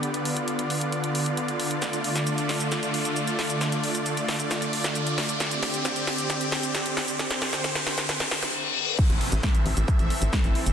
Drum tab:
CC |----------------|----------------|----------------|----------------|
HH |xxoxxxoxxxoxxxox|xxoxxxoxxxoxxxox|xxoxxxoxxxoxxxox|xxoxxxoxxxoxxxox|
SH |----------------|xx-xxx-xxx-xxx-x|xx-xxx-xxx-xxx-x|xx-xxx-xxx-xxx-x|
SD |----------------|o--o--o-o-----o-|o-----o-o--o--o-|o-o-o-o-o-o-o-o-|
BD |----------------|----------------|----------------|----------------|

CC |----------------|x---------------|
HH |xxoxxxoxxxox----|xxoxxxoxxxoxxxox|
SH |xx-xxx-xxx-x----|xx-xxx-xxx-xxx-x|
SD |oooooooooooo----|----o-------o---|
BD |----------------|o---o---o---o---|